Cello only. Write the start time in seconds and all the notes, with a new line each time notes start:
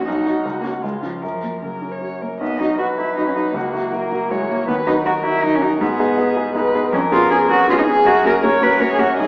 0.05 D#4
0.61 A#3
0.82 G#3
1.03 F3
1.24 F3
1.62 F#3
2.40 B3
2.59 D#4
2.78 F#4
2.98 E4
3.16 D#4
3.26 C#4
3.35 D#4
3.54 A#3
4.30 G#3
4.50 A#3
4.67 B3
4.86 D#4
5.05 F#4
5.24 E4
5.43 D#4
5.55 C#4
5.62 D#4
5.82 B3
6.93 C#4
7.13 F4
7.31 G#4
7.50 F#4
7.69 F4
7.78 D#4
7.87 G#4
8.06 F#4
8.26 A#4
8.44 C#5
8.63 B4
8.82 A#4
8.91 G#4
9.00 F#4
9.19 G#4